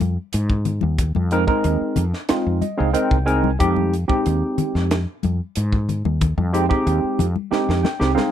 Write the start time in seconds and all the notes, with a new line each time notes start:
0.00 F2, closed hi-hat, high conga
0.33 G#2, closed hi-hat
0.50 kick
0.65 closed hi-hat, low conga
0.81 D#2, high conga
0.98 kick, closed hi-hat
1.15 F2, high conga
1.31 G#3 C4 D#4 A#4, closed hi-hat
1.47 G#3 C4 D#4 A#4, kick
1.64 D#2, closed hi-hat
1.81 muted fretless electric bass stroke
1.96 F2, closed hi-hat, low conga
2.14 snare
2.29 G#3 C4 D#4 F4, muted fretless electric bass stroke, snare, closed hi-hat
2.46 F2
2.62 D#5, closed hi-hat, high conga
2.77 C2 G#3 C4 D#4 G#4 F5
2.93 G#3 C4 D#4 A#4 G5, closed hi-hat
3.11 C2, kick
3.26 G#3 C4 D#4 A#4 G#5, closed hi-hat
3.44 high conga
3.59 F2 G#3 C4 D#4 G4, kick, closed hi-hat
3.76 high conga
3.94 closed hi-hat
4.08 G#3 C4 D#4 G4, muted fretless electric bass stroke, kick
4.26 D#2, closed hi-hat
4.58 muted fretless electric bass stroke, closed hi-hat, low conga
4.75 F2, snare
4.91 snare, closed hi-hat
5.23 F2, closed hi-hat, high conga
5.55 G#2, closed hi-hat
5.72 kick
5.89 closed hi-hat, low conga
6.05 D#2, high conga
6.21 kick, closed hi-hat, low conga
6.38 F2, high conga
6.53 G#3 C4 D#4 G4, closed hi-hat
6.69 G#3 C4 D#4 G4, kick
6.87 D#2, closed hi-hat
7.04 muted fretless electric bass stroke
7.19 F2, closed hi-hat, low conga
7.36 high conga
7.51 G#3 C4 D#4 G4, muted fretless electric bass stroke, snare
7.69 F2, snare
7.83 G5, snare, high conga
7.99 C2 G#3 C4 D#4 G4, snare
8.14 G#3 C4 D#4 G#4 F5, snare, high conga